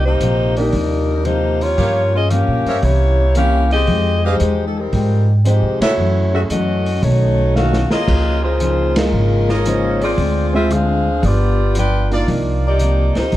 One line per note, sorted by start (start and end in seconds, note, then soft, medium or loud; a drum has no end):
0.00 0.17 C2 medium
0.06 0.58 A#3 medium
0.06 0.57 D#4 medium
0.06 0.58 G4 medium
0.06 0.58 C5 medium
0.20 0.69 A#1 medium
0.20 0.58 C3 medium
0.20 0.59 F3 medium
0.20 0.59 A#3 medium
0.20 0.60 D#4 medium
0.20 closed hi-hat medium
0.57 1.23 G3 medium
0.57 0.71 A#3 medium
0.57 0.72 D4 medium
0.57 1.22 D4 medium
0.57 0.72 D#4 medium
0.57 1.22 D#4 medium
0.57 0.73 G4 medium
0.57 1.22 A#4 medium
0.57 open hi-hat soft
0.72 1.74 D#2 medium
0.72 1.11 C3 soft
0.72 1.12 F3 soft
0.72 1.12 A#3 soft
0.72 kick soft
0.72 open hi-hat soft
0.76 1.13 D#4 soft
1.25 1.63 C3 medium
1.25 1.64 F3 medium
1.25 1.61 A#3 medium
1.25 1.64 A#3 medium
1.25 1.62 D#4 medium
1.25 1.64 D#4 medium
1.25 1.61 G4 medium
1.25 1.62 C5 loud
1.25 closed hi-hat soft
1.61 2.14 A#3 medium
1.61 2.14 F4 medium
1.61 2.15 G4 medium
1.61 2.15 C#5 medium
1.61 open hi-hat soft
1.77 2.16 G2 soft
1.77 2.44 G2 medium
1.77 2.16 F3 medium
1.77 2.17 A#3 medium
1.77 2.17 C#4 soft
1.77 2.03 G4 medium
1.77 2.03 A#4 medium
1.77 2.03 C#5 medium
1.77 2.03 F5 medium
1.77 kick soft
1.77 open hi-hat soft
2.15 2.29 C#4 medium
2.15 2.30 F4 medium
2.15 2.30 G#4 medium
2.15 2.30 D#5 medium
2.30 2.68 G2 medium
2.30 2.68 F3 medium
2.30 2.69 A#3 medium
2.30 2.83 C#4 medium
2.30 2.69 C#4 medium
2.30 2.82 G4 medium
2.30 2.83 A#4 medium
2.30 2.83 F5 medium
2.30 closed hi-hat soft
2.48 2.64 A#2 medium
2.65 2.82 G2 medium
2.65 2.78 A#4 medium
2.65 2.78 C5 medium
2.65 2.78 C#5 medium
2.65 2.78 E5 medium
2.65 open hi-hat soft
2.82 3.84 C2 medium
2.82 3.20 C3 soft
2.82 3.21 E3 soft
2.82 3.36 A#3 medium
2.82 3.22 A#3 soft
2.82 3.22 C#4 soft
2.82 3.36 E4 medium
2.82 3.35 G4 medium
2.82 3.36 C#5 medium
2.82 kick soft
2.82 open hi-hat soft
3.35 3.73 C3 medium
3.35 3.74 E3 medium
3.35 3.68 A#3 medium
3.35 3.74 A#3 medium
3.35 3.68 C#4 medium
3.35 3.69 C#4 medium
3.35 3.75 C#4 medium
3.35 3.69 E4 medium
3.35 3.70 G4 medium
3.35 3.69 G4 medium
3.35 3.69 A#4 medium
3.35 3.70 F5 loud
3.35 closed hi-hat soft
3.71 4.21 C4 medium
3.71 4.21 G4 medium
3.71 4.21 G#4 medium
3.71 4.21 D#5 loud
3.71 open hi-hat soft
3.87 4.37 F2 medium
3.87 4.26 F3 medium
3.87 4.26 G#3 soft
3.87 4.27 D#4 soft
3.87 kick soft
3.87 open hi-hat soft
3.91 4.27 G4 medium
4.24 4.65 G#3 medium
4.24 4.65 D#4 medium
4.24 4.35 G4 medium
4.24 4.65 G4 medium
4.24 4.35 G#4 medium
4.24 4.65 C5 medium
4.24 4.35 D#5 medium
4.24 4.35 F5 medium
4.39 4.89 E2 medium
4.39 4.78 F3 medium
4.39 4.78 G#3 medium
4.39 4.79 D#4 medium
4.39 4.79 G4 medium
4.39 closed hi-hat soft
4.68 4.77 A4 medium
4.78 5.29 G3 medium
4.78 5.29 C4 medium
4.78 5.29 D#4 medium
4.78 5.29 A#4 medium
4.92 5.59 G#2 medium
4.92 5.30 F3 soft
4.92 5.31 G#3 soft
4.92 5.32 D#4 medium
4.92 5.32 G4 soft
4.92 kick soft
4.92 open hi-hat soft
5.45 5.84 F3 medium
5.45 5.78 G#3 medium
5.45 5.84 G#3 medium
5.45 5.80 G#3 medium
5.45 5.78 C4 soft
5.45 5.78 D#4 soft
5.45 5.80 D#4 medium
5.45 5.84 D#4 medium
5.45 5.80 G4 medium
5.45 5.79 G4 medium
5.45 5.85 G4 medium
5.45 5.80 C5 medium
5.45 closed hi-hat soft
5.80 5.97 C#3 medium
5.80 6.31 A3 medium
5.80 6.31 E4 medium
5.80 5.93 F#4 medium
5.80 6.31 F#4 medium
5.80 5.93 A4 medium
5.80 6.30 C#5 medium
5.80 5.93 C#5 medium
5.80 5.93 E5 medium
5.80 snare medium
5.80 ride medium
5.98 6.47 F#2 medium
5.98 6.36 F#2 soft
5.98 6.36 E3 medium
5.98 6.37 A3 soft
5.98 6.37 C#4 soft
6.33 6.48 A3 medium
6.33 6.49 C#4 medium
6.33 6.42 C#4 medium
6.33 6.49 E4 medium
6.33 6.42 F#4 medium
6.33 6.49 G#4 medium
6.33 6.42 A4 medium
6.33 6.41 E5 medium
6.50 6.99 F#2 medium
6.50 6.88 F#2 medium
6.50 6.89 E3 medium
6.50 6.89 A3 medium
6.50 7.00 C#4 medium
6.50 6.89 C#4 medium
6.50 7.00 F#4 medium
6.50 7.00 A4 medium
6.50 7.00 D#5 medium
6.50 closed hi-hat soft
6.86 open hi-hat soft
7.02 7.88 B1 medium
7.02 7.40 B2 soft
7.02 7.41 D#3 soft
7.02 7.55 A3 medium
7.02 7.41 A3 soft
7.02 7.42 C#4 soft
7.02 7.55 D#4 medium
7.02 7.55 F#4 medium
7.02 7.55 C#5 medium
7.02 kick soft
7.02 open hi-hat soft
7.54 7.93 B2 medium
7.54 7.94 D#3 medium
7.54 7.87 A3 medium
7.54 7.94 A3 medium
7.54 7.87 C#4 soft
7.54 7.89 C#4 medium
7.54 7.94 C#4 medium
7.54 7.88 D#4 medium
7.54 7.88 F#4 medium
7.54 7.90 F#4 medium
7.54 7.90 A4 medium
7.54 7.90 F5 medium
7.54 snare soft
7.73 snare medium
7.90 8.40 A#3 medium
7.90 8.57 F4 medium
7.90 8.40 F4 medium
7.90 8.40 G#4 medium
7.90 8.57 A#4 medium
7.90 8.57 C#5 medium
7.90 8.57 D#5 medium
7.90 8.40 D#5 medium
7.90 muted upright bass stroke soft
7.90 snare medium
8.07 9.09 C#2 medium
8.07 8.45 C#3 soft
8.07 8.46 F3 soft
8.07 8.46 A#3 soft
8.07 8.47 D#4 soft
8.07 kick medium
8.07 crash medium
8.44 8.97 A#3 medium
8.44 8.96 F4 medium
8.44 8.97 G#4 medium
8.44 8.97 C5 medium
8.60 8.98 C#3 soft
8.60 8.99 F3 medium
8.60 8.99 A#3 medium
8.60 8.99 D#4 medium
8.60 closed hi-hat medium
8.96 9.11 G#3 medium
8.96 9.66 G#3 medium
8.96 9.11 A#3 soft
8.96 9.12 D#4 soft
8.96 9.66 D#4 medium
8.96 9.66 F4 medium
8.96 9.12 F4 medium
8.96 9.66 A#4 medium
8.96 snare medium
8.96 ride medium
9.12 10.13 G#1 medium
9.12 9.51 C#3 medium
9.12 9.51 F3 soft
9.12 9.52 A#3 soft
9.16 9.52 D#4 soft
9.48 10.14 F4 medium
9.48 10.14 A#4 medium
9.48 10.14 C#5 medium
9.48 10.14 D#5 medium
9.48 snare soft
9.65 10.03 C#3 medium
9.65 10.04 F3 medium
9.65 10.03 G#3 medium
9.65 10.04 A#3 medium
9.65 10.03 C#4 medium
9.65 10.04 D#4 medium
9.65 10.02 F4 medium
9.65 10.03 C5 medium
9.65 closed hi-hat medium
10.02 10.52 C4 medium
10.02 10.51 F4 medium
10.02 10.51 G#4 medium
10.02 10.51 D5 medium
10.02 open hi-hat soft
10.17 11.19 D2 medium
10.17 10.55 D3 soft
10.17 10.56 G#3 soft
10.17 10.56 C4 soft
10.17 10.57 F4 medium
10.17 kick soft
10.17 open hi-hat soft
10.53 10.68 G#3 medium
10.53 10.68 C4 medium
10.53 10.70 C4 medium
10.53 10.69 E4 medium
10.53 10.69 F4 medium
10.53 10.70 F4 medium
10.53 10.70 G#4 medium
10.53 10.70 E5 medium
10.69 11.08 D3 medium
10.69 11.08 G#3 medium
10.69 11.09 C4 medium
10.69 11.24 D4 medium
10.69 11.09 F4 medium
10.69 11.24 G#4 medium
10.69 11.24 F5 loud
10.69 closed hi-hat soft
10.73 11.24 C5 medium
11.21 12.24 G1 medium
11.21 11.60 G2 soft
11.21 11.60 F3 soft
11.21 11.61 B3 soft
11.21 11.61 D4 medium
11.21 kick soft
11.21 open hi-hat soft
11.25 11.77 B3 medium
11.25 11.77 F4 medium
11.25 11.77 G4 medium
11.25 11.77 D5 medium
11.75 12.13 G2 medium
11.75 12.14 F3 medium
11.75 12.14 B3 medium
11.75 12.14 D4 medium
11.75 closed hi-hat medium
11.79 12.11 F4 medium
11.79 12.11 B4 medium
11.79 12.11 D5 medium
11.79 12.11 G5 medium
12.10 12.77 A#3 medium
12.10 12.77 D4 medium
12.10 12.77 D#4 medium
12.10 12.77 F4 medium
12.10 12.78 F4 medium
12.10 12.77 A#4 medium
12.10 12.77 D5 medium
12.10 open hi-hat soft
12.27 13.13 C2 medium
12.27 12.65 C3 medium
12.27 12.66 F3 medium
12.27 12.66 A#3 medium
12.27 12.67 D#4 medium
12.27 kick soft
12.27 open hi-hat soft
12.67 13.15 A#3 medium
12.67 13.15 D#4 medium
12.67 13.15 G4 medium
12.67 13.15 D5 medium
12.79 13.18 C3 medium
12.79 13.18 F3 medium
12.79 13.19 A#3 medium
12.79 13.19 D#4 medium
12.79 closed hi-hat soft
13.15 13.32 C#2 medium
13.15 13.37 D#4 medium
13.15 13.37 C5 medium
13.15 snare soft
13.15 open hi-hat soft
13.19 13.37 A#3 medium
13.19 13.37 G4 medium
13.32 13.37 G1 medium
13.32 13.37 C3 soft
13.32 kick soft
13.32 open hi-hat soft